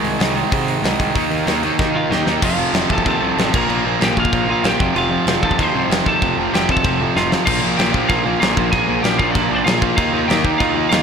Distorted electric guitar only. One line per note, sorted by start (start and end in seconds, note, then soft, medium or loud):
0.00 0.19 G#2 loud
0.00 0.20 D#3 loud
0.00 0.21 G#3 loud
0.20 0.35 G#2 medium
0.20 0.35 D#3 loud
0.20 0.34 G#3 loud
0.35 0.51 G#2 medium
0.35 0.52 D#3 loud
0.35 0.52 G#3 loud
0.52 0.83 G#2 medium
0.52 0.84 D#3 loud
0.52 0.85 G#3 loud
0.84 1.00 G#2 medium
0.84 0.99 D#3 medium
0.84 0.98 G#3 medium
0.99 1.15 G#2 medium
0.99 1.14 D#3 medium
0.99 1.14 G#3 medium
1.15 1.46 D#3 loud
1.15 1.46 A#3 loud
1.15 1.46 D#4 loud
1.47 1.63 D#3 medium
1.47 1.62 A#3 medium
1.47 1.62 D#4 medium
1.63 1.77 D#3 medium
1.63 1.78 A#3 medium
1.63 1.79 D#4 loud
1.78 2.09 D#3 medium
1.78 2.09 A#3 medium
1.78 2.10 D#4 medium
2.10 2.27 D#3 medium
2.10 2.26 A#3 medium
2.10 2.26 D#4 medium
2.27 2.42 D#3 medium
2.27 2.42 A#3 medium
2.27 2.41 D#4 loud
2.42 2.59 F2 loud
2.42 2.58 C3 loud
2.42 2.58 F3 loud
2.58 2.73 F2 medium
2.58 2.74 C3 medium
2.58 2.75 F3 loud
2.74 2.91 F2 medium
2.74 2.90 C3 loud
2.74 2.90 F3 loud
2.91 3.05 F2 medium
2.91 3.06 C3 medium
2.91 3.08 F3 loud
3.07 3.22 F2 medium
3.07 3.21 C3 loud
3.07 3.22 F3 medium
3.22 3.37 F2 medium
3.22 3.38 C3 medium
3.22 3.39 F3 medium
3.38 3.52 F2 medium
3.38 3.53 C3 medium
3.38 3.54 F3 loud
3.53 3.69 A#2 loud
3.53 3.69 F3 loud
3.53 3.68 A#3 medium
3.69 3.85 A#2 medium
3.69 3.86 F3 loud
3.69 3.86 A#3 loud
3.86 4.02 A#2 medium
3.86 4.02 F3 medium
3.86 4.00 A#3 medium
4.01 4.16 A#2 medium
4.01 4.18 F3 loud
4.01 4.17 A#3 loud
4.18 4.33 A#2 loud
4.18 4.33 F3 loud
4.18 4.32 A#3 loud
4.33 4.48 A#2 medium
4.33 4.50 F3 medium
4.33 4.50 A#3 loud
4.49 4.64 A#2 medium
4.49 4.63 F3 loud
4.49 4.63 A#3 medium
4.64 4.79 A#2 medium
4.64 4.81 F3 loud
4.64 4.79 A#3 loud
4.79 4.96 F2 loud
4.79 4.95 C3 loud
4.79 4.95 F3 loud
4.95 5.10 F2 loud
4.95 5.10 C3 loud
4.95 5.11 F3 loud
5.10 5.28 F2 medium
5.10 5.26 C3 medium
5.10 5.26 F3 medium
5.26 5.42 F2 medium
5.26 5.42 C3 loud
5.26 5.44 F3 loud
5.43 5.58 F2 medium
5.43 5.58 C3 medium
5.43 5.58 F3 loud
5.58 5.73 F2 medium
5.58 5.74 C3 medium
5.58 5.75 F3 loud
5.75 5.90 F2 medium
5.75 5.89 C3 medium
5.75 5.89 F3 medium
5.90 6.04 F2 medium
5.90 6.05 C3 medium
5.90 6.06 F3 medium
6.05 6.21 F2 medium
6.05 6.21 C3 medium
6.05 6.20 F3 loud
6.21 6.37 F2 medium
6.21 6.38 C3 loud
6.21 6.38 F3 loud
6.38 6.54 F2 medium
6.38 6.53 C3 medium
6.38 6.52 F3 medium
6.53 6.68 F2 medium
6.53 6.69 C3 loud
6.53 6.69 F3 loud
6.69 6.84 F2 medium
6.69 6.83 C3 loud
6.69 6.83 F3 loud
6.84 6.99 F2 medium
6.84 6.99 C3 medium
6.84 7.00 F3 medium
7.00 7.16 F2 medium
7.00 7.15 C3 medium
7.00 7.14 F3 medium
7.16 7.29 F2 medium
7.16 7.30 C3 loud
7.16 7.30 F3 medium
7.30 7.45 F2 medium
7.30 7.45 C3 medium
7.30 7.45 F3 loud
7.45 7.63 A#2 medium
7.45 7.62 F3 loud
7.45 7.61 A#3 loud
7.62 7.76 A#2 medium
7.62 7.77 F3 medium
7.62 7.77 A#3 medium
7.77 7.93 A#2 loud
7.77 7.93 F3 loud
7.77 7.92 A#3 loud
7.92 8.07 A#2 medium
7.92 8.08 F3 medium
7.92 8.09 A#3 loud
8.08 8.25 A#2 medium
8.08 8.24 F3 medium
8.08 8.25 A#3 loud
8.25 8.38 A#2 medium
8.25 8.39 F3 medium
8.25 8.41 A#3 loud
8.40 8.55 A#2 medium
8.40 8.54 F3 loud
8.40 8.55 A#3 loud
8.55 8.69 A#2 medium
8.55 8.70 F3 medium
8.55 8.71 A#3 medium
8.70 8.87 A#2 loud
8.70 8.86 F3 loud
8.70 8.86 A#3 loud
8.87 9.00 A#2 medium
8.87 9.02 F3 medium
8.87 9.02 A#3 loud
9.01 9.18 A#2 loud
9.01 9.16 F3 loud
9.01 9.16 A#3 loud
9.17 9.33 A#2 medium
9.17 9.34 F3 medium
9.17 9.34 A#3 loud
9.34 9.50 A#2 medium
9.34 9.49 F3 medium
9.34 9.48 A#3 loud
9.49 9.65 A#2 medium
9.49 9.66 F3 medium
9.49 9.66 A#3 loud
9.66 9.81 A#2 loud
9.66 9.81 F3 loud
9.66 9.80 A#3 loud
9.81 9.96 A#2 medium
9.81 9.97 F3 medium
9.81 9.96 A#3 medium
9.96 10.13 D#3 loud
9.96 10.12 A#3 loud
9.96 10.13 D#4 loud
10.13 10.27 D#3 medium
10.13 10.28 A#3 medium
10.13 10.30 D#4 loud
10.28 10.45 D#3 loud
10.28 10.44 A#3 loud
10.28 10.45 D#4 loud
10.45 10.58 D#3 medium
10.45 10.59 A#3 loud
10.45 10.60 D#4 medium
10.60 10.76 D#3 loud
10.60 10.75 A#3 medium
10.60 10.75 D#4 loud
10.76 10.89 D#3 medium
10.76 10.90 A#3 medium
10.76 10.90 D#4 loud
10.90 11.03 D#3 loud
10.90 11.03 A#3 medium
10.90 11.03 D#4 loud